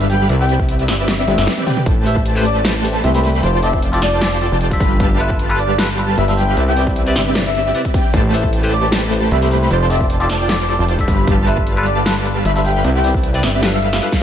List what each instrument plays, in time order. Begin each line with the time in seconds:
Already playing: analog synth bass G1, supersaw synth G3 G4 B4 F5 B5, digital synth lead B5
0.01 soft synth lead E5, closed hi-hat
0.10 soft synth lead G5, open hi-hat
0.29 analog synth bass C2, supersaw synth C4 G4 B4 D5 E5, digital synth lead E5, closed hi-hat
0.40 soft synth lead G5
0.49 closed hi-hat
0.60 kick
0.69 closed hi-hat
0.79 closed hi-hat
0.88 analog synth bass G1, snare, closed hi-hat
1.08 supersaw synth C4 G4 B4 D5 E5, digital synth lead E5, snare, closed hi-hat
1.18 soft synth lead E5
1.27 analog synth bass G1, closed hi-hat, high tom
1.38 analog synth bass G1, snare
1.47 snare, closed hi-hat
1.58 closed hi-hat, mid tom
1.67 supersaw synth C4 G4 B4 D5 G5, digital synth lead G5, mid tom, open hi-hat
1.77 mid tom
1.86 analog synth bass A1, supersaw synth A3 G4 B4 C5 A5, digital synth lead A5, kick, closed hi-hat
2.05 tine electric piano A3 E4 G4 B4 C5, soft synth lead E5, closed hi-hat
2.16 kick
2.25 closed hi-hat
2.35 tine electric piano A3 E4 G4 B4 C5, closed hi-hat
2.45 soft synth lead D5, closed hi-hat
2.64 tine electric piano A3 E4 G4 B4 C5, snare, closed hi-hat
2.83 tine electric piano A3 E4 G4 B4 C5, closed hi-hat
3.04 analog synth bass C2, supersaw synth A3 G4 B4 C5 B5, soft synth lead E5, digital synth lead B5, closed hi-hat
3.14 tine electric piano A3 E4 G4 B4 C5, soft synth lead E5, closed hi-hat
3.24 open hi-hat
3.43 analog synth bass F1, supersaw synth F4 C5 D5 G5 A5, soft synth lead C5, digital synth lead A5, closed hi-hat
3.54 soft synth lead C5
3.62 tine electric piano F3 F4 G4 A4 D5, soft synth lead E5, closed hi-hat
3.73 kick
3.82 closed hi-hat
3.92 tine electric piano F3 F4 G4 A4 D5, closed hi-hat
4.02 soft synth lead D5, snare, closed hi-hat
4.21 tine electric piano F3 F4 G4 A4 D5, supersaw synth F4 C5 D5 G5 A5, digital synth lead A5, snare, closed hi-hat
4.40 tine electric piano F3 F4 G4 A4 D5, closed hi-hat
4.52 analog synth bass F1
4.61 closed hi-hat
4.69 tine electric piano G3 D4 F4 A4 E5, kick, closed hi-hat
4.80 analog synth bass G1, supersaw synth G3 G4 B4 F5 B5, digital synth lead B5, kick, open hi-hat
5.00 supersaw synth G3 G4 B4 F5 A5, digital synth lead A5, kick, closed hi-hat
5.19 tine electric piano G3 D4 F4 A4 B4, soft synth lead E5, closed hi-hat
5.30 kick
5.39 closed hi-hat
5.49 tine electric piano G3 D4 F4 A4 B4, closed hi-hat
5.59 soft synth lead D5, closed hi-hat
5.78 tine electric piano G3 D4 F4 A4 B4, snare, closed hi-hat
5.97 tine electric piano G3 D4 F4 A4 B4, closed hi-hat
6.18 analog synth bass G1, supersaw synth G3 G4 B4 F5 B5, soft synth lead E5, digital synth lead B5, closed hi-hat
6.27 tine electric piano G3 D4 F4 A4 E5, soft synth lead E5, closed hi-hat
6.37 soft synth lead G5, open hi-hat
6.57 analog synth bass C2, supersaw synth C4 G4 B4 D5 E5, digital synth lead E5, closed hi-hat
6.67 soft synth lead G5
6.76 tine electric piano C3 C4 E4 B4 D5, closed hi-hat
6.87 kick
6.96 closed hi-hat
7.06 tine electric piano C3 C4 E4 B4 D5, closed hi-hat
7.16 analog synth bass G1, snare, closed hi-hat
7.34 tine electric piano C3 C4 E4 B4 D5, supersaw synth C4 G4 B4 D5 E5, digital synth lead E5, snare, closed hi-hat
7.46 soft synth lead E5
7.55 closed hi-hat
7.74 tine electric piano C3 C4 E4 B4 D5, closed hi-hat
7.85 kick, closed hi-hat
7.94 supersaw synth C4 G4 B4 D5 G5, digital synth lead G5, kick, open hi-hat
8.14 analog synth bass A1, supersaw synth A3 G4 B4 C5 A5, digital synth lead A5, kick, closed hi-hat
8.32 tine electric piano A3 E4 G4 B4 C5, soft synth lead E5, closed hi-hat
8.44 kick
8.53 closed hi-hat
8.62 tine electric piano A3 E4 G4 B4 C5, closed hi-hat
8.72 soft synth lead D5, closed hi-hat
8.91 tine electric piano A3 E4 G4 B4 C5, snare, closed hi-hat
9.11 tine electric piano A3 E4 G4 B4 C5, closed hi-hat
9.31 analog synth bass C2, supersaw synth A3 G4 B4 C5 B5, soft synth lead E5, digital synth lead B5, closed hi-hat
9.41 tine electric piano A3 E4 G4 B4 C5, soft synth lead E5, closed hi-hat
9.51 open hi-hat
9.71 analog synth bass F1, supersaw synth F4 C5 D5 G5 A5, soft synth lead C5, digital synth lead A5, closed hi-hat
9.81 soft synth lead C5
9.89 tine electric piano F3 F4 G4 A4 D5, soft synth lead E5, closed hi-hat
10.01 kick
10.10 closed hi-hat
10.19 tine electric piano F3 F4 G4 A4 D5, closed hi-hat
10.29 soft synth lead D5, snare, closed hi-hat
10.48 tine electric piano F3 F4 G4 A4 D5, supersaw synth F4 C5 D5 G5 A5, digital synth lead A5, snare, closed hi-hat
10.68 tine electric piano F3 F4 G4 A4 D5, closed hi-hat
10.79 analog synth bass F1
10.88 closed hi-hat
10.97 tine electric piano G3 D4 F4 A4, kick, closed hi-hat
11.01 tine electric piano E5
11.08 analog synth bass G1, supersaw synth G3 G4 B4 F5 B5, digital synth lead B5, kick, open hi-hat
11.27 supersaw synth G3 G4 B4 F5 A5, digital synth lead A5, kick, closed hi-hat
11.46 tine electric piano G3 D4 F4 A4 B4, soft synth lead E5, closed hi-hat
11.58 kick
11.67 closed hi-hat
11.76 tine electric piano G3 D4 F4 A4 B4, closed hi-hat
11.86 soft synth lead D5, closed hi-hat
12.05 tine electric piano G3 D4 F4 A4 B4, snare, closed hi-hat
12.25 tine electric piano G3 D4 F4 A4 B4, closed hi-hat
12.45 analog synth bass G1, supersaw synth G3 G4 B4 F5 B5, soft synth lead E5, digital synth lead B5, closed hi-hat
12.55 tine electric piano G3 D4 F4 A4 E5, soft synth lead E5, closed hi-hat
12.65 soft synth lead G5, open hi-hat
12.84 analog synth bass C2, supersaw synth C4 G4 B4 D5 E5, digital synth lead E5, closed hi-hat
12.95 soft synth lead G5
13.03 tine electric piano C3 C4 E4 B4 D5, closed hi-hat
13.14 kick
13.24 closed hi-hat
13.33 tine electric piano C3 C4 E4 B4 D5, closed hi-hat
13.43 analog synth bass G1, snare, closed hi-hat
13.62 tine electric piano G3 D4 F4 A4 B4, supersaw synth G3 G4 A4 B4 F5, digital synth lead F5, snare, closed hi-hat
13.73 soft synth lead E5
13.82 closed hi-hat
13.93 snare
14.01 tine electric piano G3 D4 F4 A4 B4, closed hi-hat
14.12 kick, snare, closed hi-hat